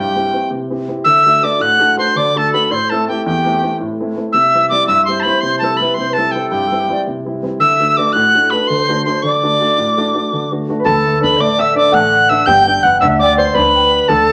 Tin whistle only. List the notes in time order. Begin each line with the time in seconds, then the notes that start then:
0.00 G5
1.04 E6
1.43 D6
1.61 F#6
1.99 C6
2.17 D6
2.37 A5
2.53 B5
2.65 B5
2.72 C6
2.90 A5
3.08 G5
3.26 G5
4.33 E6
4.69 D6
4.87 E6
5.05 C6
5.20 A5 B5
5.41 C6
5.59 A5
5.77 B5
5.94 C6
6.13 A5
6.31 G5
6.50 G5
7.60 E6
7.97 D6
8.13 F#6
8.50 B5
8.67 C6
9.05 C6
9.22 D6
10.84 A5
11.23 B5
11.41 D6
11.61 E6
11.77 D6
11.94 F#6
12.29 E6
12.46 G6
12.83 F#6
13.00 E6
13.19 D6
13.37 C6
13.55 B5
14.08 A5